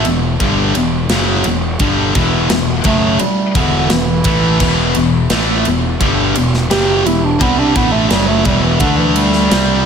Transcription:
0.05 picked electric bass E1, distorted electric guitar E2 B2, ride
0.40 picked electric bass G1, distorted electric guitar G2 D3 G3, kick, ride
0.74 picked electric bass E1, distorted electric guitar E2 B2, ride
1.09 picked electric bass F#1, distorted electric guitar F#2 C#3 F#3, snare, ride
1.44 picked electric bass E1, distorted electric guitar E2 B2, ride
1.79 picked electric bass G1, distorted electric guitar G2 D3 G3, kick, ride
2.15 picked electric bass E1, distorted electric guitar E2 B2 E3, kick, ride
2.50 picked electric bass E1, distorted electric guitar E2 B2, snare, ride
2.84 picked electric bass F#1, distorted electric guitar F#2 C#3 F#3, bass clarinet A3, kick, ride
3.19 bass clarinet G3, muted distorted electric guitar stroke, muted picked electric bass stroke, muted overdriven electric guitar stroke, ride
3.55 picked electric bass E1, distorted electric guitar E2 B2 E3, bass clarinet D3, kick, ride
3.90 picked electric bass E1, distorted electric guitar E2 B2, bass clarinet E3, snare, ride
4.24 picked electric bass A1, distorted electric guitar A2 E3 A3, kick, ride
4.60 picked electric bass E1, distorted electric guitar E2 B2 E3, kick, crash
4.95 picked electric bass E1, distorted electric guitar E2 B2, ride
5.30 picked electric bass A1, distorted electric guitar A2 E3 A3, snare, ride
5.65 picked electric bass E1, distorted electric guitar E2 B2, ride
6.01 picked electric bass G1, distorted electric guitar G2 D3 G3, kick, ride
6.36 picked electric bass E1, distorted electric guitar E2 B2, ride
6.54 snare
6.70 picked electric bass F#1, distorted electric guitar F#2 C#3 F#3, bass clarinet G4, snare, ride
7.05 picked electric bass E1, distorted electric guitar E2 B2, bass clarinet E4, ride
7.25 bass clarinet D4
7.39 picked electric bass C2, distorted electric guitar C3 G3 C4, bass clarinet B3, kick, ride
7.59 bass clarinet D4
7.74 picked electric bass A1, distorted electric guitar A2 E3 A3, bass clarinet B3, kick, ride
7.92 bass clarinet A3
8.09 picked electric bass F#1, distorted electric guitar F#2 C#3 F#3, bass clarinet G3, snare, ride
8.28 bass clarinet A3
8.44 picked electric bass E1, distorted electric guitar E2 B2 E3, bass clarinet G3, kick, ride
8.63 bass clarinet E3
8.80 picked electric bass D2, distorted electric guitar D3 A3 D4, bass clarinet D3, kick, ride
8.97 bass clarinet E3
9.15 bass clarinet G3, ride
9.33 snare
9.50 picked electric bass C2, distorted electric guitar C3 G3 C4, snare, ride

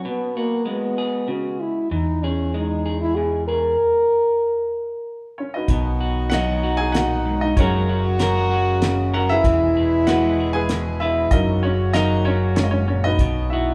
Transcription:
Already playing: clean electric guitar F#3
0.05 clean electric guitar B2, french horn B3
0.36 french horn A#3, clean electric guitar F#4
0.66 clean electric guitar G#3, french horn B3
0.98 clean electric guitar G#4
1.28 clean electric guitar C#3, french horn F#4
1.61 french horn E4
1.91 fingered electric bass E2, clean electric guitar E3, french horn D#4
2.24 french horn C#4, clean electric guitar G#4
2.54 clean electric guitar G#3, french horn D#4
2.86 clean electric guitar G#4
3.01 french horn E4
3.16 clean electric guitar B2, french horn G#4
3.47 clean electric guitar G#4, french horn A#4
5.38 upright piano C#4 C#5
5.54 upright piano D#4 F#4 B4 D#5
5.68 fingered electric bass B1, clean electric guitar B2, harmonium D#3 F#3 D#4 F#4, french horn D#4, kick, closed hi-hat
6.01 clean electric guitar F#4
6.30 clean electric guitar F#3 F#4, upright piano F#4 F#5, snare, closed hi-hat
6.34 upright piano D#5
6.63 clean electric guitar F#4
6.77 upright piano G#4 G#5
6.92 clean electric guitar A#2, upright piano F#4 F#5, snare, closed hi-hat
6.96 upright piano D#5
7.25 clean electric guitar G#2
7.41 upright piano D#4 D#5
7.56 fingered electric bass F#1, clean electric guitar F#2 F#3 C#4 F#4, harmonium C#3 G#3 A#3, french horn F#4, upright piano A#4 C#5, kick, closed hi-hat
7.60 upright piano C#4 G#4, clean electric guitar A#4
7.89 clean electric guitar F#4
8.19 clean electric guitar F#3 A#4, snare, closed hi-hat
8.51 clean electric guitar F#4
8.82 clean electric guitar C#3, snare, closed hi-hat
9.14 upright piano F#4 F#5, clean electric guitar A#4
9.29 upright piano E4 G#4 B4 E5
9.44 fingered electric bass E1, harmonium B2 E3 E4 G#4, clean electric guitar E3, french horn E4, kick, closed hi-hat
9.77 clean electric guitar G#4
10.07 clean electric guitar G#3 B4, upright piano F#4 B4 F#5, snare, closed hi-hat
10.40 clean electric guitar G#4
10.53 upright piano G#4 B4 G#5
10.69 clean electric guitar B2, snare, closed hi-hat
11.00 upright piano E4 E5, clean electric guitar B4
11.31 fingered electric bass F#1, clean electric guitar F#2, harmonium A#2 F#3 C#4 F#4, upright piano D#4 F#4 A#4 D#5, french horn F#4, kick, closed hi-hat
11.63 upright piano C#4 C#5, clean electric guitar F#4
11.93 clean electric guitar F#3 A#4, upright piano D#4 D#5, snare, closed hi-hat
12.25 upright piano C#4 C#5, clean electric guitar F#4
12.56 clean electric guitar G#2, upright piano C#4 C#5, snare, closed hi-hat
12.64 upright piano D#5
12.71 upright piano C#4 C#5
12.87 clean electric guitar A#2, upright piano C#4 C#5
13.04 upright piano D#4 F#4 B4 D#5
13.19 fingered electric bass B1, clean electric guitar B2, french horn D#4, kick, closed hi-hat
13.50 upright piano E4 E5, clean electric guitar F#4

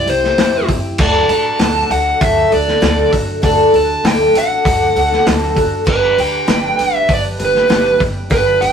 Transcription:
0.06 upright bass C2, twelve-string acoustic guitar C4 E4 G4, lead electric guitar C5, open hi-hat
0.23 snare
0.38 upright bass E2, twelve-string acoustic guitar C3 G3 C4 E4 G4, snare, open hi-hat
0.69 twelve-string acoustic guitar C4 E4 G4, kick, open hi-hat
0.98 upright bass D2, twelve-string acoustic guitar D3 A3 D4 F#4 A4, lead electric guitar D5, kick, crash
1.28 upright bass A2, twelve-string acoustic guitar D4 F#4 A4, lead electric guitar A5, open hi-hat
1.59 upright bass D2, twelve-string acoustic guitar D3 A3 D4 F#4 A4, snare, open hi-hat
1.90 upright bass D2, twelve-string acoustic guitar D4 F#4 A4, lead electric guitar F#5, open hi-hat
2.20 upright bass D2, twelve-string acoustic guitar A3 D4 F#4 A4, lead electric guitar E5, kick, open hi-hat
2.50 upright bass D2, twelve-string acoustic guitar D4 F#4 A4, lead electric guitar D5, open hi-hat
2.67 snare
2.81 upright bass D2, twelve-string acoustic guitar D3 A3 D4 F#4 A4, snare, open hi-hat
3.11 upright bass D2, twelve-string acoustic guitar D4 F#4 A4, kick, open hi-hat
3.42 upright bass D2, twelve-string acoustic guitar D3 A3 D4 F#4 A4, lead electric guitar D5, kick, open hi-hat
3.73 upright bass D2, twelve-string acoustic guitar D4 F#4 A4, lead electric guitar A5, open hi-hat
4.04 upright bass D2, twelve-string acoustic guitar D3 A3 D4 A4, lead electric guitar G5, snare, open hi-hat
4.34 upright bass A1, twelve-string acoustic guitar F#4 A4, open hi-hat
4.38 twelve-string acoustic guitar D4, lead electric guitar F#5
4.65 upright bass D2, twelve-string acoustic guitar A3 D4 F#4 A4, kick, open hi-hat
4.95 upright bass D2, twelve-string acoustic guitar D4 F#4 A4, open hi-hat
5.12 snare
5.26 upright bass D2, twelve-string acoustic guitar D3 A3 D4 F#4 A4, snare, open hi-hat
5.55 twelve-string acoustic guitar D4 F#4 A4, kick, open hi-hat
5.84 upright bass G1, twelve-string acoustic guitar G2 D3 G3 D4 G4 B4, lead electric guitar B4, kick, crash
6.17 upright bass D2, twelve-string acoustic guitar G3 D4 G4 B4, lead electric guitar G5, open hi-hat
6.47 upright bass G1, twelve-string acoustic guitar G2 D3 G3 D4 G4 B4, snare, open hi-hat
6.78 upright bass G1, twelve-string acoustic guitar G3 D4 G4 B4, open hi-hat
6.84 lead electric guitar E5
7.07 upright bass G1, twelve-string acoustic guitar G3 D4 G4 B4, kick, open hi-hat
7.13 lead electric guitar D5
7.39 upright bass G1, twelve-string acoustic guitar G3 D4 G4 B4, open hi-hat
7.45 lead electric guitar B4
7.55 snare
7.68 upright bass G1, twelve-string acoustic guitar G2 D3 G3 D4 G4 B4, snare, open hi-hat
7.98 upright bass G1, twelve-string acoustic guitar G4 B4, kick, open hi-hat
8.30 upright bass G1, twelve-string acoustic guitar G2 D3 G3 D4 G4 B4, lead electric guitar B4, kick, open hi-hat
8.60 upright bass G1, twelve-string acoustic guitar G3 D4 G4 B4, lead electric guitar G5, open hi-hat

